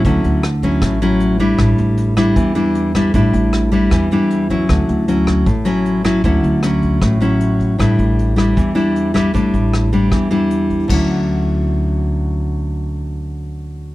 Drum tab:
CC |--------|--------|--------|--------|
HH |xxxxxxxx|xxxxxxxx|xxxxxxxx|xxxxxxxx|
SD |--r-r---|r--r---r|--r-r---|r--r---r|
BD |o--oo--o|o--oo--o|o--oo--o|o--oo--o|

CC |--------|--------|--------|x-------|
HH |xxxxxxxx|xxxxxxxx|xxxxxxxx|--------|
SD |--r-r---|r--r---r|--r-r---|--------|
BD |o--oo--o|o--oo--o|o--oo--o|o-------|

CC |--------|
HH |--------|
SD |--------|
BD |--------|